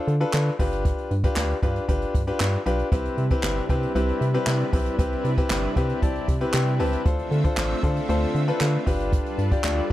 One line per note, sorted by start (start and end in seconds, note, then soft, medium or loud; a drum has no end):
0.00 0.13 D4 loud
0.00 0.13 F4 medium
0.00 0.13 A4 medium
0.00 0.13 C5 loud
0.08 0.24 D3 loud
0.08 closed hi-hat medium
0.20 0.52 D4 medium
0.20 0.52 F4 medium
0.20 0.52 A4 medium
0.20 0.52 B4 loud
0.20 closed hi-hat medium
0.33 0.50 D3 loud
0.33 snare loud
0.33 clap loud
0.46 closed hi-hat soft
0.59 0.93 G1 loud
0.59 1.11 D4 medium
0.59 1.11 F4 medium
0.59 1.11 G4 medium
0.59 1.11 B4 loud
0.59 kick loud
0.59 open hi-hat loud
0.72 closed hi-hat medium
0.85 kick loud
0.85 closed hi-hat medium
0.98 closed hi-hat medium
1.11 1.28 G2 loud
1.11 closed hi-hat medium
1.24 1.55 D4 loud
1.24 1.55 F4 medium
1.24 1.55 G4 medium
1.24 1.55 B4 loud
1.24 kick loud
1.24 closed hi-hat medium
1.36 1.54 D2 loud
1.36 snare loud
1.36 clap loud
1.50 closed hi-hat medium
1.63 1.79 G2 loud
1.63 1.83 D4 medium
1.63 1.83 F4 medium
1.63 1.83 G4 medium
1.63 1.84 B4 loud
1.63 kick medium
1.63 closed hi-hat medium
1.76 closed hi-hat medium
1.88 2.05 G1 loud
1.88 2.20 D4 medium
1.88 2.20 F4 medium
1.88 2.20 G4 medium
1.88 2.20 B4 loud
1.88 kick medium
1.88 closed hi-hat medium
2.02 closed hi-hat medium
2.15 2.31 G2 medium
2.15 kick loud
2.15 closed hi-hat medium
2.27 2.58 D4 medium
2.27 2.58 F4 medium
2.27 2.59 G4 medium
2.27 2.59 B4 loud
2.27 closed hi-hat medium
2.40 2.57 G2 loud
2.40 snare loud
2.40 clap loud
2.53 closed hi-hat soft
2.66 2.83 B1 medium
2.66 2.87 D4 loud
2.66 2.87 F4 medium
2.66 2.87 G4 medium
2.66 2.87 B4 loud
2.66 closed hi-hat medium
2.79 closed hi-hat medium
2.92 3.09 C2 loud
2.92 7.02 C3 medium
2.92 7.02 G3 medium
2.92 3.23 C4 medium
2.92 7.02 D4 medium
2.92 7.02 E4 medium
2.92 3.23 E4 medium
2.92 3.23 G4 medium
2.92 7.02 B4 medium
2.92 3.23 B4 loud
2.92 kick loud
2.92 closed hi-hat medium
3.05 closed hi-hat medium
3.18 3.35 C3 loud
3.18 closed hi-hat medium
3.30 3.62 C4 loud
3.30 3.62 E4 medium
3.30 3.62 G4 medium
3.30 3.62 B4 loud
3.30 kick medium
3.30 closed hi-hat medium
3.43 3.61 G1 medium
3.43 snare loud
3.43 clap loud
3.57 closed hi-hat medium
3.69 3.86 C3 medium
3.69 3.90 C4 medium
3.69 3.90 E4 medium
3.69 3.90 G4 medium
3.69 3.90 B4 loud
3.69 kick medium
3.69 closed hi-hat medium
3.82 closed hi-hat medium
3.95 4.12 C2 loud
3.95 4.26 C4 medium
3.95 4.26 E4 medium
3.95 4.27 G4 medium
3.95 4.27 B4 loud
3.95 closed hi-hat loud
4.08 closed hi-hat medium
4.21 4.38 C3 loud
4.21 closed hi-hat medium
4.34 4.65 C4 medium
4.34 4.65 E4 medium
4.34 4.65 G4 medium
4.34 4.66 B4 loud
4.34 closed hi-hat medium
4.47 4.64 C3 loud
4.47 snare loud
4.47 clap loud
4.60 closed hi-hat soft
4.73 4.90 B1 loud
4.73 4.94 C4 medium
4.73 4.94 E4 medium
4.73 4.94 G4 medium
4.73 4.94 B4 loud
4.73 kick loud
4.73 open hi-hat medium
4.86 closed hi-hat medium
4.99 5.16 C2 loud
4.99 5.30 C4 loud
4.99 5.30 E4 medium
4.99 5.30 G4 medium
4.99 5.30 B4 loud
4.99 kick loud
4.99 closed hi-hat loud
5.12 closed hi-hat medium
5.24 5.41 C3 loud
5.24 closed hi-hat medium
5.37 5.69 C4 medium
5.37 5.69 E4 medium
5.37 5.69 G4 medium
5.37 5.69 B4 loud
5.37 kick loud
5.37 closed hi-hat medium
5.50 5.67 G1 medium
5.50 snare loud
5.50 clap loud
5.63 closed hi-hat medium
5.76 5.93 C3 loud
5.76 5.97 C4 medium
5.76 5.97 E4 medium
5.76 5.97 G4 medium
5.76 5.97 B4 loud
5.76 6.00 E5 medium
5.76 kick medium
5.76 closed hi-hat medium
5.89 closed hi-hat medium
6.02 6.19 C2 loud
6.02 6.33 C4 medium
6.02 6.33 E4 medium
6.02 6.33 G4 medium
6.02 6.34 D5 loud
6.02 6.50 A5 medium
6.02 kick medium
6.02 closed hi-hat medium
6.15 closed hi-hat medium
6.28 6.45 C3 loud
6.28 kick loud
6.28 closed hi-hat medium
6.41 6.72 C4 medium
6.41 6.72 E4 medium
6.41 6.72 G4 medium
6.41 6.72 B4 loud
6.41 closed hi-hat medium
6.54 6.81 C3 loud
6.54 6.78 G5 medium
6.54 snare loud
6.54 clap loud
6.67 closed hi-hat medium
6.79 6.97 C#2 medium
6.79 7.00 C4 loud
6.79 7.00 E4 medium
6.79 7.01 G4 medium
6.79 7.01 B4 loud
6.79 7.04 A5 medium
6.79 open hi-hat medium
6.93 closed hi-hat medium
7.05 7.22 D2 loud
7.05 8.85 D3 medium
7.05 8.85 A3 medium
7.05 8.85 C4 medium
7.05 7.37 D4 loud
7.05 7.37 F4 medium
7.05 9.93 F4 medium
7.05 7.37 A4 medium
7.05 7.37 C5 loud
7.05 8.85 E5 medium
7.05 kick loud
7.05 closed hi-hat loud
7.19 closed hi-hat medium
7.31 7.48 D3 loud
7.31 closed hi-hat medium
7.44 7.75 D4 medium
7.44 7.76 F4 medium
7.44 7.76 A4 medium
7.44 7.76 C5 loud
7.44 kick loud
7.44 closed hi-hat medium
7.57 7.74 A1 medium
7.57 snare loud
7.57 clap loud
7.70 closed hi-hat medium
7.83 8.00 D3 loud
7.83 8.04 D4 loud
7.83 8.04 F4 medium
7.83 8.04 A4 medium
7.83 8.04 C5 loud
7.83 kick loud
7.83 closed hi-hat medium
7.96 closed hi-hat medium
8.09 8.26 D2 loud
8.09 8.40 D4 loud
8.09 8.40 F4 medium
8.09 8.40 A4 medium
8.09 8.40 C5 loud
8.09 closed hi-hat medium
8.22 closed hi-hat medium
8.35 8.52 D3 loud
8.35 closed hi-hat medium
8.48 8.79 D4 medium
8.48 8.79 F4 medium
8.48 8.79 A4 medium
8.48 8.79 B4 loud
8.48 closed hi-hat medium
8.61 8.78 D3 loud
8.61 snare medium
8.61 clap loud
8.74 closed hi-hat soft
8.86 9.20 G1 loud
8.86 9.93 G3 medium
8.86 9.38 D4 loud
8.86 9.93 D4 medium
8.86 9.39 F4 medium
8.86 9.39 G4 medium
8.86 9.93 A4 medium
8.86 9.93 B4 medium
8.86 9.39 B4 loud
8.86 kick loud
8.86 open hi-hat medium
9.00 closed hi-hat medium
9.13 kick loud
9.13 closed hi-hat loud
9.26 closed hi-hat medium
9.38 9.55 G2 loud
9.38 closed hi-hat medium
9.51 9.83 D4 loud
9.51 9.83 F4 medium
9.51 9.83 G4 medium
9.51 9.83 D5 loud
9.51 kick loud
9.51 closed hi-hat medium
9.64 9.81 D2 loud
9.64 snare loud
9.64 clap loud
9.78 closed hi-hat medium